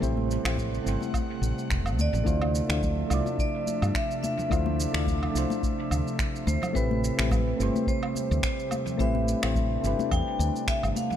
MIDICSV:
0, 0, Header, 1, 6, 480
1, 0, Start_track
1, 0, Tempo, 560748
1, 17, Time_signature, 4, 2, 24, 8
1, 9557, End_track
2, 0, Start_track
2, 0, Title_t, "Vibraphone"
2, 0, Program_c, 0, 11
2, 0, Note_on_c, 0, 72, 81
2, 1424, Note_off_c, 0, 72, 0
2, 1721, Note_on_c, 0, 74, 86
2, 2899, Note_off_c, 0, 74, 0
2, 2910, Note_on_c, 0, 74, 92
2, 3350, Note_off_c, 0, 74, 0
2, 3384, Note_on_c, 0, 76, 98
2, 3491, Note_off_c, 0, 76, 0
2, 3618, Note_on_c, 0, 76, 97
2, 4064, Note_off_c, 0, 76, 0
2, 5541, Note_on_c, 0, 72, 81
2, 5779, Note_on_c, 0, 71, 81
2, 5786, Note_off_c, 0, 72, 0
2, 6703, Note_off_c, 0, 71, 0
2, 6745, Note_on_c, 0, 72, 91
2, 7214, Note_off_c, 0, 72, 0
2, 7224, Note_on_c, 0, 72, 83
2, 7705, Note_on_c, 0, 76, 88
2, 7715, Note_off_c, 0, 72, 0
2, 8627, Note_off_c, 0, 76, 0
2, 8659, Note_on_c, 0, 79, 94
2, 9104, Note_off_c, 0, 79, 0
2, 9145, Note_on_c, 0, 76, 96
2, 9251, Note_off_c, 0, 76, 0
2, 9385, Note_on_c, 0, 77, 99
2, 9557, Note_off_c, 0, 77, 0
2, 9557, End_track
3, 0, Start_track
3, 0, Title_t, "Synth keys"
3, 0, Program_c, 1, 88
3, 0, Control_c, 1, 64, 127
3, 0, Note_on_c, 1, 57, 80
3, 0, Note_on_c, 1, 60, 69
3, 0, Note_on_c, 1, 64, 73
3, 0, Note_on_c, 1, 67, 75
3, 0, Note_on_c, 1, 71, 83
3, 0, Note_on_c, 1, 72, 92
3, 5, Note_off_c, 1, 57, 0
3, 5, Note_on_c, 1, 57, 95
3, 12, Note_off_c, 1, 60, 0
3, 12, Note_on_c, 1, 60, 91
3, 15, Note_off_c, 1, 64, 0
3, 15, Note_on_c, 1, 64, 84
3, 23, Note_off_c, 1, 67, 0
3, 23, Note_on_c, 1, 67, 89
3, 30, Note_off_c, 1, 72, 0
3, 30, Note_on_c, 1, 72, 102
3, 351, Note_off_c, 1, 57, 0
3, 355, Note_off_c, 1, 60, 0
3, 357, Note_off_c, 1, 64, 0
3, 361, Note_off_c, 1, 67, 0
3, 364, Note_off_c, 1, 72, 0
3, 374, Note_on_c, 1, 57, 84
3, 383, Note_on_c, 1, 60, 76
3, 389, Note_on_c, 1, 64, 77
3, 398, Note_on_c, 1, 67, 80
3, 406, Note_on_c, 1, 72, 94
3, 696, Note_off_c, 1, 57, 0
3, 707, Note_on_c, 1, 57, 76
3, 708, Note_off_c, 1, 60, 0
3, 711, Note_off_c, 1, 64, 0
3, 716, Note_off_c, 1, 67, 0
3, 719, Note_off_c, 1, 72, 0
3, 722, Note_on_c, 1, 60, 73
3, 735, Note_on_c, 1, 64, 70
3, 750, Note_on_c, 1, 67, 66
3, 760, Note_on_c, 1, 72, 84
3, 1896, Note_off_c, 1, 57, 0
3, 1904, Note_off_c, 1, 60, 0
3, 1910, Note_off_c, 1, 64, 0
3, 1914, Note_on_c, 1, 57, 83
3, 1918, Note_off_c, 1, 67, 0
3, 1921, Note_on_c, 1, 62, 73
3, 1923, Note_off_c, 1, 72, 0
3, 1933, Note_on_c, 1, 64, 75
3, 1936, Note_on_c, 1, 65, 76
3, 1944, Note_on_c, 1, 72, 93
3, 1948, Control_c, 1, 64, 0
3, 1949, Note_off_c, 1, 71, 0
3, 2081, Control_c, 1, 64, 127
3, 2266, Note_off_c, 1, 57, 0
3, 2270, Note_off_c, 1, 62, 0
3, 2276, Note_off_c, 1, 64, 0
3, 2277, Note_off_c, 1, 65, 0
3, 2281, Note_off_c, 1, 72, 0
3, 2299, Note_on_c, 1, 57, 77
3, 2307, Note_on_c, 1, 62, 66
3, 2311, Note_on_c, 1, 64, 63
3, 2320, Note_on_c, 1, 65, 72
3, 2328, Note_on_c, 1, 72, 80
3, 2622, Note_off_c, 1, 57, 0
3, 2630, Note_off_c, 1, 62, 0
3, 2632, Note_off_c, 1, 64, 0
3, 2632, Note_on_c, 1, 57, 79
3, 2637, Note_off_c, 1, 65, 0
3, 2641, Note_off_c, 1, 72, 0
3, 2643, Note_on_c, 1, 62, 72
3, 2661, Note_on_c, 1, 64, 71
3, 2675, Note_on_c, 1, 65, 71
3, 2686, Note_on_c, 1, 74, 79
3, 3819, Note_off_c, 1, 57, 0
3, 3824, Note_off_c, 1, 62, 0
3, 3833, Note_off_c, 1, 64, 0
3, 3840, Note_off_c, 1, 65, 0
3, 3846, Note_off_c, 1, 74, 0
3, 3846, Note_on_c, 1, 57, 90
3, 3854, Note_on_c, 1, 62, 87
3, 3860, Note_on_c, 1, 64, 90
3, 3870, Note_on_c, 1, 65, 82
3, 3875, Note_on_c, 1, 72, 101
3, 4192, Note_off_c, 1, 57, 0
3, 4196, Note_off_c, 1, 62, 0
3, 4199, Note_off_c, 1, 64, 0
3, 4204, Note_off_c, 1, 65, 0
3, 4206, Note_off_c, 1, 72, 0
3, 4217, Note_on_c, 1, 57, 87
3, 4225, Note_on_c, 1, 62, 78
3, 4232, Note_on_c, 1, 64, 80
3, 4240, Note_on_c, 1, 65, 82
3, 4247, Note_on_c, 1, 74, 91
3, 4541, Note_off_c, 1, 57, 0
3, 4549, Note_off_c, 1, 62, 0
3, 4551, Note_on_c, 1, 57, 81
3, 4552, Note_off_c, 1, 64, 0
3, 4556, Note_off_c, 1, 65, 0
3, 4560, Note_off_c, 1, 74, 0
3, 4564, Note_on_c, 1, 62, 69
3, 4581, Note_on_c, 1, 64, 67
3, 4596, Note_on_c, 1, 65, 68
3, 4605, Note_on_c, 1, 72, 90
3, 5738, Note_off_c, 1, 57, 0
3, 5744, Note_off_c, 1, 62, 0
3, 5753, Note_off_c, 1, 64, 0
3, 5760, Note_off_c, 1, 65, 0
3, 5763, Note_on_c, 1, 57, 80
3, 5765, Note_off_c, 1, 72, 0
3, 5767, Note_on_c, 1, 60, 76
3, 5776, Note_on_c, 1, 64, 73
3, 5782, Note_on_c, 1, 67, 79
3, 5787, Control_c, 1, 64, 0
3, 5790, Note_on_c, 1, 71, 99
3, 5963, Control_c, 1, 64, 127
3, 6110, Note_off_c, 1, 57, 0
3, 6113, Note_off_c, 1, 60, 0
3, 6117, Note_off_c, 1, 64, 0
3, 6120, Note_off_c, 1, 67, 0
3, 6124, Note_off_c, 1, 71, 0
3, 6137, Note_on_c, 1, 57, 76
3, 6143, Note_on_c, 1, 60, 65
3, 6152, Note_on_c, 1, 64, 70
3, 6160, Note_on_c, 1, 67, 68
3, 6164, Note_on_c, 1, 71, 82
3, 6465, Note_off_c, 1, 57, 0
3, 6468, Note_off_c, 1, 60, 0
3, 6472, Note_off_c, 1, 64, 0
3, 6474, Note_on_c, 1, 57, 83
3, 6476, Note_off_c, 1, 67, 0
3, 6478, Note_off_c, 1, 71, 0
3, 6490, Note_on_c, 1, 60, 76
3, 6504, Note_on_c, 1, 64, 73
3, 6520, Note_on_c, 1, 67, 77
3, 6532, Note_on_c, 1, 72, 88
3, 7659, Note_off_c, 1, 57, 0
3, 7667, Note_off_c, 1, 60, 0
3, 7674, Note_off_c, 1, 64, 0
3, 7682, Note_on_c, 1, 57, 90
3, 7683, Note_off_c, 1, 67, 0
3, 7688, Note_off_c, 1, 72, 0
3, 7691, Note_on_c, 1, 60, 87
3, 7699, Note_on_c, 1, 64, 86
3, 7706, Note_on_c, 1, 67, 85
3, 7715, Note_on_c, 1, 71, 105
3, 8030, Note_off_c, 1, 57, 0
3, 8035, Note_off_c, 1, 60, 0
3, 8039, Note_off_c, 1, 64, 0
3, 8042, Note_off_c, 1, 67, 0
3, 8047, Note_off_c, 1, 71, 0
3, 8064, Note_on_c, 1, 57, 82
3, 8071, Note_on_c, 1, 60, 77
3, 8078, Note_on_c, 1, 64, 82
3, 8085, Note_on_c, 1, 67, 76
3, 8093, Note_on_c, 1, 72, 93
3, 8388, Note_off_c, 1, 57, 0
3, 8392, Note_off_c, 1, 60, 0
3, 8396, Note_off_c, 1, 64, 0
3, 8397, Note_on_c, 1, 57, 81
3, 8399, Note_off_c, 1, 67, 0
3, 8403, Note_off_c, 1, 72, 0
3, 8408, Note_on_c, 1, 60, 71
3, 8423, Note_on_c, 1, 64, 68
3, 8436, Note_on_c, 1, 67, 72
3, 8451, Note_on_c, 1, 71, 84
3, 9557, Note_off_c, 1, 57, 0
3, 9557, Note_off_c, 1, 60, 0
3, 9557, Note_off_c, 1, 64, 0
3, 9557, Note_off_c, 1, 67, 0
3, 9557, Note_off_c, 1, 71, 0
3, 9557, End_track
4, 0, Start_track
4, 0, Title_t, "Analog synth pad"
4, 0, Program_c, 2, 89
4, 0, Note_on_c, 2, 48, 83
4, 0, Note_on_c, 2, 55, 73
4, 0, Note_on_c, 2, 57, 71
4, 11, Note_on_c, 2, 78, 92
4, 1904, Note_off_c, 2, 55, 0
4, 1915, Note_off_c, 2, 78, 0
4, 1930, Note_on_c, 2, 53, 71
4, 1930, Note_on_c, 2, 62, 74
4, 1930, Note_on_c, 2, 76, 86
4, 5739, Note_off_c, 2, 53, 0
4, 5739, Note_off_c, 2, 62, 0
4, 5748, Note_off_c, 2, 57, 0
4, 5778, Note_on_c, 2, 55, 74
4, 5781, Note_on_c, 2, 57, 77
4, 7659, Note_off_c, 2, 76, 0
4, 7684, Note_on_c, 2, 62, 91
4, 9557, Note_off_c, 2, 48, 0
4, 9557, Note_off_c, 2, 55, 0
4, 9557, Note_off_c, 2, 57, 0
4, 9557, Note_off_c, 2, 62, 0
4, 9557, End_track
5, 0, Start_track
5, 0, Title_t, "Fretless electric bass"
5, 0, Program_c, 3, 35
5, 17, Note_on_c, 3, 33, 91
5, 309, Note_off_c, 3, 33, 0
5, 385, Note_on_c, 3, 33, 90
5, 669, Note_off_c, 3, 33, 0
5, 738, Note_on_c, 3, 31, 79
5, 820, Note_off_c, 3, 31, 0
5, 1211, Note_on_c, 3, 33, 75
5, 1296, Note_off_c, 3, 33, 0
5, 1456, Note_on_c, 3, 28, 76
5, 1694, Note_off_c, 3, 28, 0
5, 1694, Note_on_c, 3, 38, 84
5, 1777, Note_off_c, 3, 38, 0
5, 1824, Note_on_c, 3, 33, 86
5, 1893, Note_off_c, 3, 33, 0
5, 1935, Note_on_c, 3, 38, 85
5, 2228, Note_off_c, 3, 38, 0
5, 2304, Note_on_c, 3, 38, 86
5, 2589, Note_off_c, 3, 38, 0
5, 2659, Note_on_c, 3, 36, 81
5, 2740, Note_off_c, 3, 36, 0
5, 3272, Note_on_c, 3, 43, 84
5, 3337, Note_off_c, 3, 43, 0
5, 3859, Note_on_c, 3, 38, 93
5, 4150, Note_off_c, 3, 38, 0
5, 4228, Note_on_c, 3, 38, 88
5, 4511, Note_off_c, 3, 38, 0
5, 4580, Note_on_c, 3, 36, 80
5, 4661, Note_off_c, 3, 36, 0
5, 5060, Note_on_c, 3, 38, 74
5, 5140, Note_off_c, 3, 38, 0
5, 5537, Note_on_c, 3, 38, 96
5, 5619, Note_off_c, 3, 38, 0
5, 5777, Note_on_c, 3, 33, 93
5, 6069, Note_off_c, 3, 33, 0
5, 6155, Note_on_c, 3, 33, 93
5, 6435, Note_off_c, 3, 33, 0
5, 6504, Note_on_c, 3, 31, 80
5, 6582, Note_off_c, 3, 31, 0
5, 7115, Note_on_c, 3, 38, 88
5, 7179, Note_off_c, 3, 38, 0
5, 7696, Note_on_c, 3, 33, 91
5, 7988, Note_off_c, 3, 33, 0
5, 8076, Note_on_c, 3, 33, 90
5, 8355, Note_off_c, 3, 33, 0
5, 8422, Note_on_c, 3, 31, 81
5, 8502, Note_off_c, 3, 31, 0
5, 8656, Note_on_c, 3, 40, 95
5, 8739, Note_off_c, 3, 40, 0
5, 8897, Note_on_c, 3, 38, 95
5, 8979, Note_off_c, 3, 38, 0
5, 9272, Note_on_c, 3, 31, 94
5, 9337, Note_off_c, 3, 31, 0
5, 9557, End_track
6, 0, Start_track
6, 0, Title_t, "Drums"
6, 15, Note_on_c, 9, 36, 89
6, 27, Note_on_c, 9, 82, 42
6, 101, Note_off_c, 9, 36, 0
6, 113, Note_off_c, 9, 82, 0
6, 148, Note_on_c, 9, 63, 78
6, 234, Note_off_c, 9, 63, 0
6, 265, Note_on_c, 9, 82, 70
6, 350, Note_off_c, 9, 82, 0
6, 388, Note_on_c, 9, 26, 80
6, 388, Note_on_c, 9, 77, 80
6, 395, Note_on_c, 9, 82, 29
6, 474, Note_off_c, 9, 26, 0
6, 474, Note_off_c, 9, 77, 0
6, 481, Note_off_c, 9, 82, 0
6, 490, Note_on_c, 9, 63, 61
6, 494, Note_on_c, 9, 36, 90
6, 499, Note_on_c, 9, 64, 69
6, 505, Note_on_c, 9, 82, 39
6, 576, Note_off_c, 9, 63, 0
6, 579, Note_off_c, 9, 36, 0
6, 585, Note_off_c, 9, 64, 0
6, 591, Note_off_c, 9, 82, 0
6, 637, Note_on_c, 9, 82, 29
6, 722, Note_off_c, 9, 82, 0
6, 743, Note_on_c, 9, 82, 71
6, 828, Note_off_c, 9, 82, 0
6, 862, Note_on_c, 9, 63, 83
6, 877, Note_on_c, 9, 82, 29
6, 948, Note_off_c, 9, 63, 0
6, 962, Note_off_c, 9, 82, 0
6, 973, Note_on_c, 9, 36, 93
6, 976, Note_on_c, 9, 77, 70
6, 983, Note_on_c, 9, 82, 39
6, 1059, Note_off_c, 9, 36, 0
6, 1061, Note_off_c, 9, 77, 0
6, 1068, Note_off_c, 9, 82, 0
6, 1223, Note_on_c, 9, 63, 63
6, 1224, Note_on_c, 9, 82, 65
6, 1309, Note_off_c, 9, 63, 0
6, 1310, Note_off_c, 9, 82, 0
6, 1357, Note_on_c, 9, 82, 30
6, 1443, Note_off_c, 9, 82, 0
6, 1455, Note_on_c, 9, 36, 96
6, 1459, Note_on_c, 9, 26, 73
6, 1467, Note_on_c, 9, 82, 40
6, 1541, Note_off_c, 9, 36, 0
6, 1545, Note_off_c, 9, 26, 0
6, 1552, Note_off_c, 9, 82, 0
6, 1590, Note_on_c, 9, 77, 75
6, 1597, Note_on_c, 9, 82, 27
6, 1676, Note_off_c, 9, 77, 0
6, 1683, Note_off_c, 9, 82, 0
6, 1702, Note_on_c, 9, 63, 82
6, 1703, Note_on_c, 9, 82, 68
6, 1788, Note_off_c, 9, 63, 0
6, 1789, Note_off_c, 9, 82, 0
6, 1829, Note_on_c, 9, 64, 88
6, 1836, Note_on_c, 9, 82, 28
6, 1915, Note_off_c, 9, 64, 0
6, 1922, Note_off_c, 9, 82, 0
6, 1935, Note_on_c, 9, 36, 92
6, 1943, Note_on_c, 9, 82, 42
6, 2021, Note_off_c, 9, 36, 0
6, 2028, Note_off_c, 9, 82, 0
6, 2068, Note_on_c, 9, 77, 78
6, 2073, Note_on_c, 9, 63, 73
6, 2153, Note_off_c, 9, 77, 0
6, 2159, Note_off_c, 9, 63, 0
6, 2183, Note_on_c, 9, 82, 76
6, 2269, Note_off_c, 9, 82, 0
6, 2309, Note_on_c, 9, 26, 77
6, 2316, Note_on_c, 9, 82, 31
6, 2395, Note_off_c, 9, 26, 0
6, 2402, Note_off_c, 9, 82, 0
6, 2416, Note_on_c, 9, 36, 92
6, 2418, Note_on_c, 9, 64, 78
6, 2423, Note_on_c, 9, 82, 40
6, 2425, Note_on_c, 9, 63, 56
6, 2502, Note_off_c, 9, 36, 0
6, 2504, Note_off_c, 9, 64, 0
6, 2509, Note_off_c, 9, 82, 0
6, 2511, Note_off_c, 9, 63, 0
6, 2656, Note_on_c, 9, 77, 73
6, 2663, Note_on_c, 9, 82, 76
6, 2742, Note_off_c, 9, 77, 0
6, 2749, Note_off_c, 9, 82, 0
6, 2791, Note_on_c, 9, 63, 96
6, 2797, Note_on_c, 9, 82, 30
6, 2877, Note_off_c, 9, 63, 0
6, 2882, Note_off_c, 9, 82, 0
6, 2897, Note_on_c, 9, 36, 102
6, 2907, Note_on_c, 9, 82, 39
6, 2982, Note_off_c, 9, 36, 0
6, 2992, Note_off_c, 9, 82, 0
6, 3143, Note_on_c, 9, 63, 63
6, 3144, Note_on_c, 9, 82, 72
6, 3229, Note_off_c, 9, 63, 0
6, 3230, Note_off_c, 9, 82, 0
6, 3273, Note_on_c, 9, 77, 74
6, 3280, Note_on_c, 9, 82, 32
6, 3358, Note_off_c, 9, 77, 0
6, 3365, Note_off_c, 9, 82, 0
6, 3377, Note_on_c, 9, 36, 100
6, 3381, Note_on_c, 9, 26, 80
6, 3388, Note_on_c, 9, 82, 41
6, 3463, Note_off_c, 9, 36, 0
6, 3467, Note_off_c, 9, 26, 0
6, 3474, Note_off_c, 9, 82, 0
6, 3519, Note_on_c, 9, 82, 30
6, 3605, Note_off_c, 9, 82, 0
6, 3626, Note_on_c, 9, 63, 88
6, 3628, Note_on_c, 9, 82, 72
6, 3711, Note_off_c, 9, 63, 0
6, 3714, Note_off_c, 9, 82, 0
6, 3754, Note_on_c, 9, 64, 86
6, 3761, Note_on_c, 9, 82, 33
6, 3839, Note_off_c, 9, 64, 0
6, 3847, Note_off_c, 9, 82, 0
6, 3858, Note_on_c, 9, 36, 102
6, 3866, Note_on_c, 9, 77, 69
6, 3873, Note_on_c, 9, 82, 46
6, 3944, Note_off_c, 9, 36, 0
6, 3951, Note_off_c, 9, 77, 0
6, 3959, Note_off_c, 9, 82, 0
6, 3987, Note_on_c, 9, 63, 94
6, 4072, Note_off_c, 9, 63, 0
6, 4109, Note_on_c, 9, 82, 81
6, 4195, Note_off_c, 9, 82, 0
6, 4232, Note_on_c, 9, 26, 78
6, 4240, Note_on_c, 9, 82, 31
6, 4318, Note_off_c, 9, 26, 0
6, 4325, Note_off_c, 9, 82, 0
6, 4337, Note_on_c, 9, 63, 63
6, 4338, Note_on_c, 9, 36, 94
6, 4339, Note_on_c, 9, 64, 78
6, 4350, Note_on_c, 9, 82, 41
6, 4422, Note_off_c, 9, 63, 0
6, 4424, Note_off_c, 9, 36, 0
6, 4424, Note_off_c, 9, 64, 0
6, 4436, Note_off_c, 9, 82, 0
6, 4474, Note_on_c, 9, 77, 71
6, 4560, Note_off_c, 9, 77, 0
6, 4587, Note_on_c, 9, 82, 76
6, 4673, Note_off_c, 9, 82, 0
6, 4710, Note_on_c, 9, 63, 95
6, 4720, Note_on_c, 9, 82, 33
6, 4796, Note_off_c, 9, 63, 0
6, 4806, Note_off_c, 9, 82, 0
6, 4818, Note_on_c, 9, 36, 99
6, 4826, Note_on_c, 9, 82, 42
6, 4904, Note_off_c, 9, 36, 0
6, 4911, Note_off_c, 9, 82, 0
6, 5061, Note_on_c, 9, 63, 69
6, 5061, Note_on_c, 9, 77, 70
6, 5068, Note_on_c, 9, 82, 75
6, 5147, Note_off_c, 9, 63, 0
6, 5147, Note_off_c, 9, 77, 0
6, 5154, Note_off_c, 9, 82, 0
6, 5200, Note_on_c, 9, 82, 32
6, 5286, Note_off_c, 9, 82, 0
6, 5298, Note_on_c, 9, 36, 101
6, 5300, Note_on_c, 9, 26, 78
6, 5307, Note_on_c, 9, 82, 43
6, 5384, Note_off_c, 9, 36, 0
6, 5385, Note_off_c, 9, 26, 0
6, 5392, Note_off_c, 9, 82, 0
6, 5442, Note_on_c, 9, 82, 28
6, 5527, Note_off_c, 9, 82, 0
6, 5537, Note_on_c, 9, 63, 81
6, 5547, Note_on_c, 9, 82, 70
6, 5623, Note_off_c, 9, 63, 0
6, 5633, Note_off_c, 9, 82, 0
6, 5674, Note_on_c, 9, 64, 97
6, 5674, Note_on_c, 9, 77, 69
6, 5681, Note_on_c, 9, 82, 33
6, 5759, Note_off_c, 9, 64, 0
6, 5759, Note_off_c, 9, 77, 0
6, 5767, Note_off_c, 9, 82, 0
6, 5776, Note_on_c, 9, 36, 102
6, 5790, Note_on_c, 9, 82, 47
6, 5862, Note_off_c, 9, 36, 0
6, 5876, Note_off_c, 9, 82, 0
6, 5915, Note_on_c, 9, 63, 85
6, 6000, Note_off_c, 9, 63, 0
6, 6028, Note_on_c, 9, 82, 80
6, 6114, Note_off_c, 9, 82, 0
6, 6152, Note_on_c, 9, 26, 81
6, 6159, Note_on_c, 9, 82, 34
6, 6238, Note_off_c, 9, 26, 0
6, 6245, Note_off_c, 9, 82, 0
6, 6256, Note_on_c, 9, 36, 105
6, 6259, Note_on_c, 9, 63, 70
6, 6260, Note_on_c, 9, 64, 84
6, 6262, Note_on_c, 9, 77, 69
6, 6269, Note_on_c, 9, 82, 44
6, 6341, Note_off_c, 9, 36, 0
6, 6345, Note_off_c, 9, 63, 0
6, 6345, Note_off_c, 9, 64, 0
6, 6348, Note_off_c, 9, 77, 0
6, 6355, Note_off_c, 9, 82, 0
6, 6509, Note_on_c, 9, 82, 75
6, 6594, Note_off_c, 9, 82, 0
6, 6640, Note_on_c, 9, 63, 92
6, 6641, Note_on_c, 9, 82, 32
6, 6726, Note_off_c, 9, 63, 0
6, 6727, Note_off_c, 9, 82, 0
6, 6735, Note_on_c, 9, 36, 102
6, 6748, Note_on_c, 9, 82, 43
6, 6821, Note_off_c, 9, 36, 0
6, 6834, Note_off_c, 9, 82, 0
6, 6871, Note_on_c, 9, 77, 73
6, 6957, Note_off_c, 9, 77, 0
6, 6979, Note_on_c, 9, 63, 69
6, 6988, Note_on_c, 9, 82, 74
6, 7064, Note_off_c, 9, 63, 0
6, 7073, Note_off_c, 9, 82, 0
6, 7120, Note_on_c, 9, 82, 34
6, 7206, Note_off_c, 9, 82, 0
6, 7215, Note_on_c, 9, 36, 100
6, 7217, Note_on_c, 9, 26, 75
6, 7225, Note_on_c, 9, 82, 43
6, 7300, Note_off_c, 9, 36, 0
6, 7303, Note_off_c, 9, 26, 0
6, 7310, Note_off_c, 9, 82, 0
6, 7357, Note_on_c, 9, 82, 30
6, 7442, Note_off_c, 9, 82, 0
6, 7456, Note_on_c, 9, 77, 67
6, 7463, Note_on_c, 9, 82, 74
6, 7464, Note_on_c, 9, 63, 85
6, 7541, Note_off_c, 9, 77, 0
6, 7548, Note_off_c, 9, 82, 0
6, 7549, Note_off_c, 9, 63, 0
6, 7587, Note_on_c, 9, 64, 83
6, 7594, Note_on_c, 9, 82, 32
6, 7673, Note_off_c, 9, 64, 0
6, 7679, Note_off_c, 9, 82, 0
6, 7694, Note_on_c, 9, 36, 100
6, 7703, Note_on_c, 9, 82, 44
6, 7780, Note_off_c, 9, 36, 0
6, 7788, Note_off_c, 9, 82, 0
6, 7832, Note_on_c, 9, 63, 85
6, 7917, Note_off_c, 9, 63, 0
6, 7946, Note_on_c, 9, 82, 82
6, 8031, Note_off_c, 9, 82, 0
6, 8071, Note_on_c, 9, 26, 78
6, 8071, Note_on_c, 9, 77, 75
6, 8078, Note_on_c, 9, 82, 33
6, 8157, Note_off_c, 9, 26, 0
6, 8157, Note_off_c, 9, 77, 0
6, 8164, Note_off_c, 9, 82, 0
6, 8175, Note_on_c, 9, 36, 97
6, 8178, Note_on_c, 9, 63, 64
6, 8178, Note_on_c, 9, 64, 72
6, 8184, Note_on_c, 9, 82, 43
6, 8260, Note_off_c, 9, 36, 0
6, 8263, Note_off_c, 9, 63, 0
6, 8264, Note_off_c, 9, 64, 0
6, 8270, Note_off_c, 9, 82, 0
6, 8425, Note_on_c, 9, 82, 77
6, 8510, Note_off_c, 9, 82, 0
6, 8554, Note_on_c, 9, 63, 99
6, 8560, Note_on_c, 9, 82, 34
6, 8640, Note_off_c, 9, 63, 0
6, 8646, Note_off_c, 9, 82, 0
6, 8655, Note_on_c, 9, 36, 98
6, 8658, Note_on_c, 9, 77, 68
6, 8666, Note_on_c, 9, 82, 43
6, 8741, Note_off_c, 9, 36, 0
6, 8744, Note_off_c, 9, 77, 0
6, 8751, Note_off_c, 9, 82, 0
6, 8898, Note_on_c, 9, 63, 70
6, 8906, Note_on_c, 9, 82, 76
6, 8983, Note_off_c, 9, 63, 0
6, 8991, Note_off_c, 9, 82, 0
6, 9040, Note_on_c, 9, 82, 34
6, 9125, Note_off_c, 9, 82, 0
6, 9136, Note_on_c, 9, 36, 98
6, 9140, Note_on_c, 9, 26, 74
6, 9147, Note_on_c, 9, 82, 41
6, 9222, Note_off_c, 9, 36, 0
6, 9225, Note_off_c, 9, 26, 0
6, 9233, Note_off_c, 9, 82, 0
6, 9274, Note_on_c, 9, 77, 71
6, 9281, Note_on_c, 9, 82, 29
6, 9360, Note_off_c, 9, 77, 0
6, 9367, Note_off_c, 9, 82, 0
6, 9381, Note_on_c, 9, 63, 80
6, 9386, Note_on_c, 9, 82, 69
6, 9467, Note_off_c, 9, 63, 0
6, 9472, Note_off_c, 9, 82, 0
6, 9512, Note_on_c, 9, 64, 84
6, 9521, Note_on_c, 9, 82, 31
6, 9557, Note_off_c, 9, 64, 0
6, 9557, Note_off_c, 9, 82, 0
6, 9557, End_track
0, 0, End_of_file